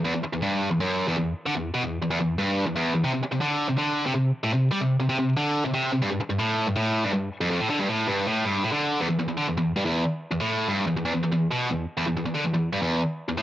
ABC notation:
X:1
M:4/4
L:1/16
Q:1/4=161
K:G
V:1 name="Distorted electric guitar" clef=bass
E,, E,, z E,, G,,3 E,, F,,3 E,, E,,2 z D, | E,,2 B,, E,,2 E,, E,, E,,2 G,,3 E,, E,,2 E,, | C, C, z C, D,3 C, D,3 C, C,2 z A,, | C,2 G, C,2 C, C, C,2 D,3 C, C,2 C, |
G,, G,, z G,, A,,3 G,, A,,3 G,, G,,2 z =F,, | =F,, A,, D, G,, A,,2 G,,2 A,,2 G,,2 A,, D,3 | E,, E,, E,, E,, D, E,, E,,2 G,, E,,2 z3 E,, A,,- | A,,2 G,,2 E,, E,, E,, E,, E,, E,,2 B,,2 E,,2 z |
E,, E,, E,, E,, D, E,, E,,2 G,, E,,2 z3 E,, A,, |]